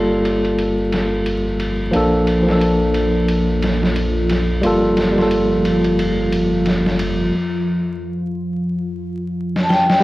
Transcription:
Already playing: sub bass G1, ambient pad F3 F4, tine electric piano G3 A#3 F4 A4
0.25 ride
0.45 ride
0.59 ride
0.93 snare, ride
1.26 ride
1.60 ride
1.91 sub bass A#1, tine electric piano F3 A#3 D4, ride
1.96 tine electric piano A4
2.27 ride
2.42 tine electric piano F3 A#3
2.49 tine electric piano D4 A4, snare
2.61 ride
2.94 ride
3.28 ride
3.62 snare, ride
3.83 snare
3.96 ride
4.29 snare, ride
4.61 sub bass G1, tine electric piano G3 A#3 F4, ride
4.66 tine electric piano A4
4.97 snare, ride
5.13 tine electric piano G3 A#3
5.18 tine electric piano F4, snare
5.22 tine electric piano A4
5.31 ride
5.65 ride
5.84 ride
5.99 ride
6.32 ride
6.66 snare, ride
6.86 snare
6.99 ride
9.56 snare
9.63 vibraphone A5
9.69 vibraphone G5, snare
9.90 snare
10.00 tine electric piano G3

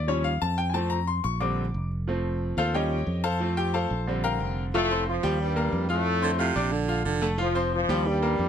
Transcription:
Already playing: fingered electric bass D#2
0.07 grand piano F3 G3 C#4 C#5
0.24 grand piano F5
0.42 fingered electric bass F2, grand piano A5
0.58 grand piano G5
0.70 grand piano F3 G#5
0.74 grand piano A3 C4 A5
0.90 grand piano A#5
1.07 grand piano C6
1.24 fingered electric bass A#1, grand piano C#6
1.40 grand piano D3 G3 C4 D6
1.74 fingered electric bass F1
2.07 grand piano F3 A3 C4
2.57 fingered electric bass D#2, grand piano F4 A4 C5 F5
2.74 grand piano F3 G3 C#4 G4 C#5 D#5 G5
3.07 fingered electric bass F2
3.24 grand piano A4 C5 F5 A5
3.40 grand piano F3 A3 C4
3.57 grand piano G4 G5
3.74 grand piano A4 C5 F5 A5
3.91 fingered electric bass A#1
4.07 grand piano D3 G3 C4
4.24 grand piano A#4 F5 G5 A#5
4.40 fingered electric bass F1
4.74 trombone section A2 A3, grand piano F3 F4 F5
4.91 grand piano C4 C5 C6
5.08 trombone section F3 F4
5.23 fingered electric bass D#2, grand piano G3 G4 G5
5.41 trombone section G2 G3
5.56 grand piano A#3 A#4 A#5
5.72 fingered electric bass F2
5.89 trombone section A2 A3, grand piano F4 F5 F6
6.22 baritone saxophone D3, grand piano C4 C5 C6
6.39 baritone saxophone C3, grand piano F4 F5 F6
6.55 fingered electric bass A#1, grand piano D4 D5 D6
6.72 baritone saxophone D3
6.88 grand piano F4 F5 F6
7.05 fingered electric bass F1, baritone saxophone D3
7.21 grand piano A3 A4 A5
7.38 grand piano F3 F4 F5, trombone section F4
7.42 trombone section F3
7.55 grand piano C4 C5 C6
7.74 trombone section F3 F4
7.89 fingered electric bass D#2, grand piano G3 G4 G5
8.07 trombone section G2 G3
8.22 grand piano A#3 A#4 A#5
8.39 fingered electric bass F2

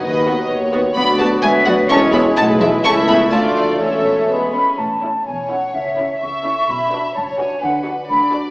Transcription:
Already playing: french horn section F#3
0.02 double bass section D#2, tuba D#2, cello section D#3, french horn section B3, violin section B4 D#5, flute section B4
0.26 bassoon B3, viola section B3 F#4, clarinet F#4
0.49 tuba D#2, double bass section D#2, violin section C#5
0.72 bassoon B3, viola section B3 F#4, clarinet F#4
0.96 double bass section D2, tuba D2, french horn section F#3, cello section B3, bassoon B3, clarinet F#4, violin section D5 B5, flute section F#5
1.19 cello section A3, viola section B3 F#4, flute section F#5, violin section A5
1.42 tuba D2, double bass section D2, cello section G#3, violin section B4 G#5, flute section E5
1.65 cello section F#3, viola section B3 F#4, flute section D5, violin section F#5
1.89 tuba E1, double bass section E2, bassoon G#3, french horn section G#3 E4, cello section C#4, clarinet E4, violin section C#5 C#6, flute section A5
2.13 viola section G#3 E4, cello section B3, flute section G#5, violin section B5
2.36 tuba B1, double bass section B1, cello section A3, violin section B4 A5, flute section F#5
2.60 cello section E3, viola section G#3 E4, flute section C#5, violin section E5
2.83 tuba C#2, double bass section C#2, viola section A3 E4, french horn section A3 E4, bassoon A3, cello section C#4, violin section E5 C#6, flute section A5
3.08 cello section B3, flute section G#5, violin section B5
3.32 double bass section D2, tuba D2, cello section A3, french horn section A3 F4, viola section A3 F4, clarinet F4, violin section D5 A5, flute section F5
3.57 cello section F3, flute section D5, violin section F5
3.80 tuba E1, double bass section E2, cello section E3, french horn section A3 C#4, viola section C#4 A4, clarinet C#4, violin section C#5 E5, flute section C#5
4.30 french horn section G#3 B3, bassoon G#3, viola section B3, clarinet B3, flute section B5
4.54 viola section C#4
4.78 double bass section A1, cello section A2, flute section A5
5.03 viola section C#4 E4, violin section A4
5.26 double bass section E1, cello section E2, violin section C#5, flute section G#5
5.51 viola section C#4 E4, violin section A4, flute section F#5
5.75 double bass section C#2, cello section C#3, flute section E5
5.98 viola section C#4 E4, violin section A4
6.22 double bass section C#2, cello section C#3, violin section E5, flute section C#6
6.44 viola section C#4 E4, violin section A4
6.69 double bass section B1, cello section B2, flute section B5
6.93 viola section D4 F#4, violin section B4
7.15 double bass section F#1, cello section F#2, violin section C#5, flute section A5
7.38 viola section D4 F#4, violin section B4, flute section G#5
7.62 double bass section D2, cello section D3, violin section B4, flute section F#5
7.86 viola section D4 F#4, violin section B4
8.09 double bass section D2, cello section D3, violin section D5, flute section B5
8.32 viola section D4 F#4, violin section B4

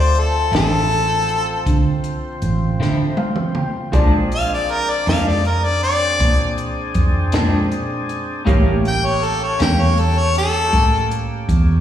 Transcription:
Already playing: fingered electric bass D2, tonewheel organ F3 C4, grand piano F4 A4 C5 E5
0.00 harmonica C5
0.15 closed hi-hat
0.19 harmonica A4
0.52 fingered electric bass A1, clean electric guitar D3 F3 C4 E4, harmonica A4, snare, closed hi-hat
0.91 closed hi-hat
1.29 closed hi-hat
1.66 fingered electric bass D3, kick, closed hi-hat
2.04 closed hi-hat
2.42 fingered electric bass A1, closed hi-hat
2.80 fingered electric bass D3, clean electric guitar D3 F3 C4 E4, snare
3.17 grand piano F5, high tom
3.36 mid tom
3.55 grand piano G5, mid tom
3.92 fingered electric bass A#1, clean electric guitar A#2 F3 G#3 D4, tonewheel organ C4 D4 G#4, grand piano F4 G#4 C5 D5, kick, closed hi-hat
4.32 harmonica F5, closed hi-hat
4.53 harmonica D5
4.70 harmonica A#4, closed hi-hat
4.90 harmonica D5
5.06 fingered electric bass F2, clean electric guitar A#2 F3 G#3 D4, harmonica F5, snare, closed hi-hat
5.28 harmonica D5
5.45 harmonica A#4, closed hi-hat
5.64 harmonica D5
5.83 harmonica D5, closed hi-hat
6.20 fingered electric bass A#2, kick, closed hi-hat
6.58 closed hi-hat
6.95 fingered electric bass F2, kick, closed hi-hat
7.32 fingered electric bass A#2, clean electric guitar A#2 F3 G#3 D4, snare, closed hi-hat
7.72 closed hi-hat
8.09 closed hi-hat
8.45 fingered electric bass A1, clean electric guitar A2 G3 A#3 C#4, tonewheel organ A#3 C#4 G4, grand piano A#3 E4 G4 C#5, kick, closed hi-hat
8.85 harmonica G5, closed hi-hat
9.06 harmonica C#5
9.23 harmonica A4, closed hi-hat
9.43 harmonica C#5
9.59 fingered electric bass E2, clean electric guitar A2 G3 A#3 C#4, harmonica G5, snare, closed hi-hat
9.81 harmonica C#5
9.98 harmonica A4, closed hi-hat
10.19 harmonica C#5
10.35 harmonica A4, snare, closed hi-hat
10.73 fingered electric bass A2, kick, closed hi-hat
11.11 closed hi-hat
11.49 fingered electric bass E2, kick, closed hi-hat

